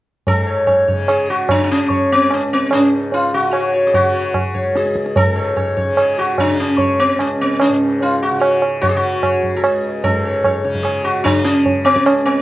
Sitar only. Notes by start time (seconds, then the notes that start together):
0.28 A4
0.47 C#5
0.67 C#5
0.88 C#5
1.09 G#4
1.30 F#4
1.51 D4
1.63 D4
1.71 C#4
1.90 C#5
2.12 C4
2.34 C#4
2.53 C4
2.73 C#4
3.14 F4
3.34 F#4
3.53 C#5
3.73 C#5
3.87 G#4
3.94 F#4
4.13 C#5
4.54 C#5
4.76 G#4
5.17 A4
5.36 C#5
5.56 C#5
5.77 C#5
5.98 G#4
6.19 F#4
6.40 D4
6.60 C#4
6.79 C#5
7.00 C4
7.20 C#4
7.41 C4
7.61 C#4
8.02 F4
8.23 F#4
8.42 C#5
8.81 F#4 C#5
8.89 G#4
8.96 F#4
9.24 C#5
9.56 A4
9.64 G#4
10.04 A4
10.25 C#5
10.45 C#5
10.65 C#5
10.83 G#4
11.04 F#4
11.24 D4
11.44 C#4
11.85 C4
12.06 C#4
12.26 C4